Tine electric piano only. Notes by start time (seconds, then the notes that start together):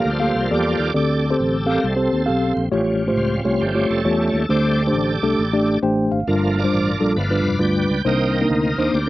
0.20 A#3 G4 A4 F5
0.51 A#3 G4 A4 D5
0.94 D3 C4 G4 A4 D5
1.30 C4 G4 A4 C5
1.66 C4 G4 A4 F5
1.96 C4 G4 A4 C5
2.26 C4 G4 A4 F5
2.71 A2 A3 F4 G4 C#5
3.07 A3 F4 G4 C5
3.45 A3 F4 G4 C#5
3.75 A3 F4 G4 C#5
4.05 A3 F4 G4 C#5
4.49 D3 A3 D4 G4 C5
4.87 A3 D4 G4 C5
5.23 A3 D4 G4 A4
5.53 A3 D4 G4 D5
5.83 A3 D4 G4 C5 G5
6.12 F5
6.28 G2 G3 D4 F4 A#4
6.64 G3 D4 F4 C5
7.00 G3 D4 F4 A4
7.17 G2
7.30 G3 D4 F4 B4
7.59 G3 D4 F4 B4
8.05 C3 A#3 D4 D#4 C5
8.41 A#3 D4 D#4 A#4
8.78 A#3 D4 D#4 C5